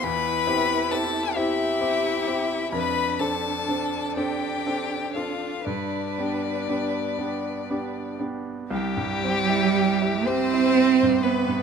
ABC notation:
X:1
M:6/8
L:1/16
Q:3/8=41
K:C
V:1 name="Violin"
b4 a2 e6 | b2 a4 g4 f2 | d8- d2 z2 | G6 c4 B2 |]
V:2 name="Violin"
B4 A2 E6 | B2 A4 G4 F2 | D8- D2 z2 | G6 c4 B2 |]
V:3 name="Cello"
E6 G6 | D12 | B8- B z3 | G,6 C4 B,2 |]
V:4 name="Grand piano"
E,,2 [CEG]2 [CEG]2 [CEG]2 [CEG]2 [CEG]2 | F,,2 [CDA]2 [CDA]2 [CDA]2 [CDA]2 [CDA]2 | G,,2 [B,DG]2 [B,DG]2 [B,DG]2 [B,DG]2 [B,DG]2 | C,, G,, C E G E G E C G,, C G,, |]